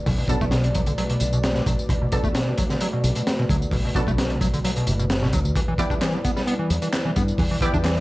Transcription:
Already playing: analog synth pad A3 F#4 B4 D5
0.06 fingered electric bass B1, acid bass B2, kick, open hi-hat, tambourine
0.18 acid bass B2
0.28 acid bass B2, synth stab F#3 B3 D4 A4, kick, closed hi-hat, tambourine
0.41 fingered electric bass B1, acid bass A3, kick, tambourine
0.51 acid bass B2, snare, closed hi-hat, tambourine
0.64 acid bass C3, closed hi-hat
0.75 acid bass F#3, kick, closed hi-hat, tambourine
0.86 acid bass D3, closed hi-hat, tambourine
0.98 acid bass F#3, closed hi-hat, tambourine
1.10 acid bass B2, closed hi-hat
1.20 fingered electric bass B1, acid bass C3, closed hi-hat, tambourine
1.33 acid bass B2, tambourine
1.44 snare, closed hi-hat, tambourine
1.55 acid bass B2, snare
1.66 fingered electric bass B1, acid bass F#3, kick, closed hi-hat, tambourine
1.79 tambourine
1.89 acid bass B2, kick, closed hi-hat, tambourine
2.02 acid bass B2
2.12 acid bass B2, synth stab F#3 B3 D4 A4, kick, closed hi-hat, tambourine
2.24 acid bass A3, kick, tambourine
2.35 acid bass B2, snare, closed hi-hat, tambourine
2.47 acid bass C3
2.58 acid bass F#3, kick, closed hi-hat, tambourine
2.70 acid bass D3, snare, tambourine
2.81 acid bass F#3, closed hi-hat, tambourine
2.93 acid bass B2
3.04 fingered electric bass B1, acid bass C3, closed hi-hat, tambourine
3.15 acid bass B2, closed hi-hat, tambourine
3.27 snare, closed hi-hat, tambourine
3.39 acid bass B2
3.49 fingered electric bass D2, acid bass F#3, kick, closed hi-hat, tambourine
3.62 tambourine
3.71 fingered electric bass B1, acid bass B2, kick, open hi-hat, tambourine
3.85 acid bass B2
3.95 acid bass B2, synth stab F#3 B3 D4 A4, kick, closed hi-hat, tambourine
4.07 fingered electric bass B1, acid bass A3, kick, tambourine
4.18 acid bass B2, snare, closed hi-hat, tambourine
4.30 acid bass C3, closed hi-hat
4.41 acid bass F#3, kick, closed hi-hat, tambourine
4.53 acid bass D3, closed hi-hat, tambourine
4.64 acid bass F#3, closed hi-hat, tambourine
4.76 acid bass B2, closed hi-hat
4.87 fingered electric bass F#1, acid bass C3, closed hi-hat, tambourine
4.99 acid bass B2, tambourine
5.10 snare, closed hi-hat, tambourine
5.22 acid bass B2, snare
5.33 fingered electric bass D2, acid bass F#3, kick, closed hi-hat, tambourine
5.44 fingered electric bass D2, tambourine
5.55 acid bass E3, analog synth pad G3 E4 B4 D5, kick, closed hi-hat, tambourine
5.68 acid bass E3
5.78 acid bass E3, synth stab B3 E4 G4 D5, kick, closed hi-hat, tambourine
5.90 acid bass D4, kick, tambourine
6.01 acid bass E3, snare, clap, closed hi-hat, tambourine
6.14 acid bass F#3
6.25 acid bass B3, kick, closed hi-hat, tambourine
6.36 acid bass G3, snare, tambourine
6.47 acid bass B3, closed hi-hat, tambourine
6.59 acid bass E3
6.70 fingered electric bass E2, acid bass F#3, closed hi-hat, tambourine
6.82 acid bass E3, closed hi-hat, tambourine
6.93 snare, clap, closed hi-hat, tambourine
7.05 acid bass E3
7.16 fingered electric bass G2, acid bass B3, kick, closed hi-hat, tambourine
7.28 tambourine
7.38 fingered electric bass E2, acid bass E3, kick, open hi-hat, tambourine
7.51 acid bass E3
7.61 acid bass E3, synth stab B3 E4 G4 D5, kick, closed hi-hat, tambourine
7.74 fingered electric bass E2, acid bass D4, kick, tambourine
7.85 acid bass E3, snare, clap, closed hi-hat, tambourine
7.97 acid bass F#3, closed hi-hat

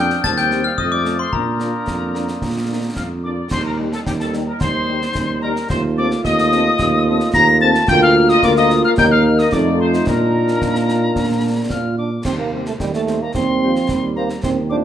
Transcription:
Already playing: tuba F2, trombone section F3 D4, trumpet section G5, glockenspiel G6
0.10 snare
0.23 tuba D#2, trombone section G3 C4, trumpet section A5, glockenspiel A6, piccolo A6, concert bass drum, snare
0.37 trumpet section G5, glockenspiel G6, piccolo G6, snare
0.51 french horn section G3 C4 G4, snare
0.64 trumpet section F5, glockenspiel F6, piccolo F6
0.78 tuba F2, trombone section A3, trumpet section D#5, glockenspiel D#6, piccolo D#6, concert bass drum
0.91 trumpet section D5, glockenspiel D6, piccolo D6
1.05 french horn section A3 C4 F4, snare
1.19 trumpet section C5, glockenspiel C6, piccolo C6
1.33 tuba A#2, trombone section A#3 D4, trumpet section A#4, glockenspiel A#5, piccolo A#5, concert bass drum
1.60 french horn section A#3 D4 F4, snare
1.87 tuba F2, concert bass drum, snare
2.15 french horn section A#3 D4 F4, snare
2.28 snare
2.42 tuba A#2, concert bass drum, snare
2.70 french horn section A#3 D4 F4
2.96 tuba F2, trumpet section F5, piccolo F6, concert bass drum, snare
3.23 french horn section A#3 D4 F4, trumpet section D5, piccolo D6
3.50 tuba D#2, trombone section G3 D#4, trumpet section C5, piccolo C6, concert bass drum, snare, crash
3.64 trumpet section A#4, piccolo A#5
3.79 french horn section G3 D#4 G4
3.93 trumpet section A4, piccolo A5, snare
4.06 tuba D#2, trumpet section G4, piccolo G5, concert bass drum, snare
4.19 trumpet section A4, piccolo A5, snare
4.33 french horn section G3 D#4 G4, snare
4.47 trumpet section A#4, piccolo A#5
4.60 tuba D#2, trumpet section C5, piccolo C6, concert bass drum, snare
4.89 french horn section G3 D#4 G4
5.02 snare
5.15 tuba D#2, concert bass drum, snare
5.42 french horn section G3 D#4 G4, trumpet section A#4, piccolo A#5
5.56 snare
5.69 tuba D#2, trombone section A3 F4, trumpet section C5, piccolo C6, concert bass drum, snare
5.97 french horn section C4 F4 A4, trumpet section D5, piccolo D6
6.11 snare
6.24 tuba D#2, trumpet section D#5, piccolo D#6, concert bass drum, snare
6.39 snare
6.52 french horn section C4 F4 A4, snare
6.79 tuba D#2, concert bass drum, snare
7.06 french horn section C4 F4 A4
7.20 snare
7.34 tuba D#2, trumpet section A#5, piccolo A#6, concert bass drum, snare
7.61 french horn section C4 F4 A4, trumpet section A5, piccolo A6
7.75 snare
7.88 tuba D2, french horn section A#3 F4 A#4, trombone section A#3 F4, trumpet section G5, piccolo G6, concert bass drum, snare, crash
8.02 trumpet section F5, piccolo F6
8.29 trumpet section D#5, piccolo D#6, snare
8.43 tuba D2, french horn section A#3 F4 A#4, trumpet section D5, piccolo D6, concert bass drum, snare
8.56 trumpet section D#5, piccolo D#6, snare
8.70 snare
8.84 trumpet section F5, piccolo F6
8.98 tuba D#2, french horn section A#3 D#4 A#4, trombone section D#4, trumpet section G5, piccolo G6, concert bass drum, snare
9.11 trumpet section F5, piccolo F6
9.39 trumpet section D#5, piccolo D#6, snare
9.52 tuba F2, french horn section A3 D#4 F4, trombone section A3, trumpet section D5, piccolo D6, concert bass drum, snare
9.80 trumpet section C5, piccolo C6
9.94 snare
10.07 tuba A#2, trombone section A#3, french horn section A#3 D4 F4, trumpet section A#4, piccolo A#5, concert bass drum, snare
10.48 snare
10.62 tuba A#2, concert bass drum, snare
10.75 snare
10.89 snare
11.16 tuba A#2, trombone section D4, concert bass drum, snare
11.70 tuba A#2, euphonium F4, piccolo F6, concert bass drum, snare
11.98 euphonium D4, piccolo D6
12.25 tuba D#2, trombone section C3, euphonium C4, piccolo C6, concert bass drum, snare, crash
12.39 euphonium A#3, piccolo A#5
12.52 french horn section G3 C4 G4, trumpet section C5
12.66 euphonium A3, piccolo A5, snare
12.78 tuba D#2, trombone section D#3, euphonium G3, piccolo G5, concert bass drum, snare
12.94 euphonium A3, piccolo A5, snare
13.07 french horn section G3 C4 G4, trumpet section C5, snare
13.22 euphonium A#3, piccolo A#5
13.34 tuba D#2, trombone section G3, euphonium C4, piccolo C6, concert bass drum, snare
13.62 trombone section F3, french horn section G3 C4 G4, trumpet section C5
13.76 snare
13.89 tuba D#2, trombone section G3, concert bass drum, snare
14.16 french horn section G3 C4 G4, euphonium A#3, trumpet section C5, piccolo A#5
14.30 snare
14.43 tuba D#2, trombone section D#3, euphonium C4, piccolo C6, concert bass drum, snare
14.70 french horn section A3 C4 F4, euphonium D4, trumpet section C5, piccolo D6

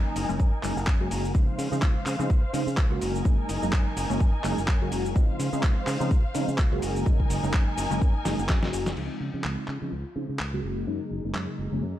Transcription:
Already playing: analog polysynth C#3 F#3 G#3 A#3 D#4, string section D#4 A#4 G#5
0.16 fingered electric bass F#1, open hi-hat, shaker
0.29 fingered electric bass F#1, analog polysynth C#3 F#3 G#3 A#3 C#4, shaker
0.40 fingered electric bass F#2, kick, shaker
0.62 fingered electric bass F#1, analog polysynth C#3 F#3 G#3 A#3 D#4, clap, open hi-hat, shaker
0.77 fingered electric bass F#1, shaker
0.87 fingered electric bass F#2, kick, clap, shaker
1.00 analog polysynth C#3 F#3 G#3 A#3 F#4
1.11 fingered electric bass F#1, open hi-hat, shaker
1.25 shaker
1.34 fingered electric bass C#2, analog polysynth C#3 F3 G#3 C4 D#4, string section C5 F5, kick, shaker
1.58 fingered electric bass C#3, open hi-hat, shaker
1.71 analog polysynth C#3 F3 G#3 C4 D#4, fingered electric bass C#3, shaker
1.82 fingered electric bass C#2, kick, clap, shaker
2.06 fingered electric bass C#3, clap, open hi-hat, shaker
2.19 analog polysynth C#3 F3 G#3 C4 D#4, fingered electric bass C#3, shaker
2.30 fingered electric bass C#2, kick, shaker
2.53 analog polysynth C#3 F3 G#3 C4 D#4, fingered electric bass C#3, open hi-hat, shaker
2.67 fingered electric bass C#3, shaker
2.77 fingered electric bass C#2, kick, clap, shaker
2.90 analog polysynth C#3 F#3 G#3 A#3 F#4
3.01 fingered electric bass F#1, string section D#4 A#4 G#5, open hi-hat, shaker
3.15 shaker
3.24 fingered electric bass F#2, analog polysynth C#3 F#3 G#3 A#3 D#4, kick, shaker
3.49 fingered electric bass F#1, open hi-hat, shaker
3.62 fingered electric bass F#1, analog polysynth C#3 F#3 G#3 A#3 D#4, shaker
3.73 fingered electric bass F#2, kick, clap, shaker
3.96 fingered electric bass F#1, open hi-hat, shaker
4.09 fingered electric bass F#1, analog polysynth C#3 F#3 G#3 A#3 C#4, shaker
4.20 fingered electric bass F#2, kick, shaker
4.44 fingered electric bass F#1, analog polysynth C#3 F#3 G#3 A#3 D#4, clap, open hi-hat, shaker
4.58 fingered electric bass F#1, shaker
4.68 fingered electric bass F#2, kick, clap, shaker
4.81 analog polysynth C#3 F#3 G#3 A#3 F#4
4.92 fingered electric bass F#1, open hi-hat, shaker
5.06 shaker
5.15 fingered electric bass C#2, analog polysynth C#3 F3 G#3 C4 D#4, string section C5 F5, kick, shaker
5.40 fingered electric bass C#3, open hi-hat, shaker
5.52 analog polysynth C#3 F3 G#3 C4 D#4, fingered electric bass C#3, shaker
5.63 fingered electric bass C#2, kick, clap, shaker
5.87 fingered electric bass C#3, clap, open hi-hat, shaker
6.00 analog polysynth C#3 F3 G#3 C4 D#4, fingered electric bass C#3, shaker
6.11 fingered electric bass C#2, kick, shaker
6.34 analog polysynth C#3 F3 G#3 C4 D#4, fingered electric bass C#3, open hi-hat, shaker
6.48 fingered electric bass C#3, shaker
6.58 fingered electric bass C#2, kick, clap, shaker
6.71 analog polysynth C#3 F#3 G#3 A#3 F#4
6.82 fingered electric bass F#1, string section D#4 A#4 G#5, open hi-hat, shaker
6.96 shaker
7.05 fingered electric bass F#2, analog polysynth C#3 F#3 G#3 A#3 D#4, kick, shaker
7.20 kick
7.30 fingered electric bass F#1, open hi-hat, shaker
7.43 fingered electric bass F#1, analog polysynth C#3 F#3 G#3 A#3 D#4, shaker
7.53 fingered electric bass F#2, kick, clap, shaker
7.78 fingered electric bass F#1, open hi-hat, shaker
7.90 fingered electric bass F#1, analog polysynth C#3 F#3 G#3 A#3 C#4, shaker
8.02 fingered electric bass F#2, kick, shaker
8.25 fingered electric bass F#1, analog polysynth C#3 F#3 G#3 A#3 D#4, snare, open hi-hat, shaker
8.39 fingered electric bass F#1, shaker
8.49 fingered electric bass F#2, kick, snare, clap, shaker
8.62 analog polysynth C#3 F#3 G#3 A#3 F#4, snare
8.73 fingered electric bass F#1, open hi-hat, shaker
8.86 snare, shaker
8.96 fingered electric bass C#2, analog polysynth C#3 F3 G#3 C4 D#4, string section F4 C6, crash
9.20 fingered electric bass C#3
9.34 analog polysynth C#3 F3 G#3 C4 D#4, fingered electric bass C#3
9.44 fingered electric bass C#2, clap
9.68 fingered electric bass C#3, clap
9.82 analog polysynth C#3 F3 G#3 C4 D#4, fingered electric bass C#3
9.92 fingered electric bass C#2
10.15 analog polysynth C#3 F3 G#3 C4 D#4, fingered electric bass C#3
10.29 fingered electric bass C#3
10.39 fingered electric bass C#2, clap
10.53 analog polysynth C#3 F#3 G#3 A#3 F#4
10.64 fingered electric bass F#1, string section G#4 D#5 A#5
10.87 fingered electric bass F#2, analog polysynth C#3 F#3 G#3 A#3 D#4
11.11 fingered electric bass F#1
11.24 fingered electric bass F#1, analog polysynth C#3 F#3 G#3 A#3 D#4
11.35 fingered electric bass F#2, clap
11.59 fingered electric bass F#1
11.71 fingered electric bass F#1, analog polysynth C#3 F#3 G#3 A#3 C#4
11.82 fingered electric bass F#2

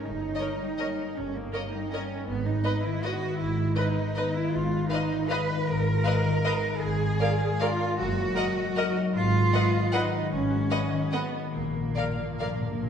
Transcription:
Already playing: harp A#3 C#5
0.02 double bass section G1, harp G2, cello section D#4
0.22 harp C#5
0.37 viola section A#4, violin section C#5 D#5
0.41 harp D#4
0.61 harp G3
0.78 harp A#3, viola section A#4, violin section C#5 D#5
0.99 harp C#5
1.16 double bass section G1, harp G2, cello section C#4
1.35 cello section A#3, harp D#4
1.53 harp A#3, viola section A#4, violin section C#5 D#5
1.74 harp G3, cello section D#4
1.92 harp A#3, cello section C#4, viola section A#4, violin section C#5 D#5
2.11 harp C#5
2.28 double bass section G#1, harp G#2, cello section B3
2.47 cello section D#4, harp B4
2.65 harp D#4, viola section B4, violin section B4 D#5
2.85 harp D#3, cello section E4
3.04 harp B3, cello section F#4, violin section B4 D#5, viola section B4
3.24 harp B4
3.40 double bass section G#1, harp G#2, cello section E4
3.60 harp D#4
3.76 harp B3, cello section D#4, viola section B4, violin section B4 D#5
3.98 harp D#3
4.16 harp B3, viola section B4, violin section B4 D#5
4.36 cello section E4, harp B4
4.53 double bass section G#1, harp G#2, cello section F4
4.72 harp B4
4.90 cello section D#4, harp F4, viola section B4, violin section D#5 F5
5.11 harp D#3
5.29 harp D#4, viola section B4, cello section B4, violin section D#5 F5
5.50 harp B4
5.68 double bass section G#1, harp G#2, cello section A#4
5.87 harp F4
6.05 harp D#4, viola section B4, violin section D#5 F5
6.25 harp D#3
6.45 harp D#4, viola section B4, violin section D#5 F5
6.65 harp B4
6.82 double bass section G#1, harp G#2, cello section G#4
7.01 harp A#4
7.20 harp F4, viola section A#4, violin section D5 F5
7.41 harp G#3
7.60 harp D4, cello section F4, viola section A#4, violin section D5 F5
7.81 harp A#4
7.98 double bass section F#1, harp F#2, cello section F#4
8.17 harp A#4
8.36 harp F#4, viola section A#4, violin section D#5 F#5
8.57 harp F#3
8.76 harp D#4, viola section A#4, violin section D#5 F#5
8.97 harp A#4
9.15 double bass section G#1, harp G#2, cello section F4
9.34 harp B4
9.54 harp F#4, viola section B4, violin section D#5 F#5
9.74 harp D#3
9.93 cello section D#4, harp D#4, viola section B4, violin section D#5 F#5
10.14 harp B4
10.30 double bass section G#1, harp G#2, cello section C#4
10.50 harp F#4
10.71 harp D#4, viola section B4, violin section D#5 F#5
10.92 harp D#3
11.11 cello section B3, harp D#4, viola section B4, violin section D#5 F#5
11.34 harp B4
11.52 double bass section A#1, timpani A#2, harp A#2, cello section A#3
11.60 timpani A#2
11.68 timpani A#2
11.75 timpani A#2, harp A#4
11.86 timpani A#2
11.93 timpani A#2, harp F4, viola section A#4, violin section D5 F5
12.02 timpani A#2
12.11 timpani A#2
12.19 timpani A#2, harp F3
12.27 timpani A#2
12.35 timpani A#2
12.40 harp D4, viola section A#4, violin section D5 F5
12.44 timpani A#2
12.52 timpani A#2
12.60 timpani A#2, harp A#4
12.67 timpani A#2
12.75 timpani A#2
12.81 double bass section A#1, harp A#2, timpani A#2

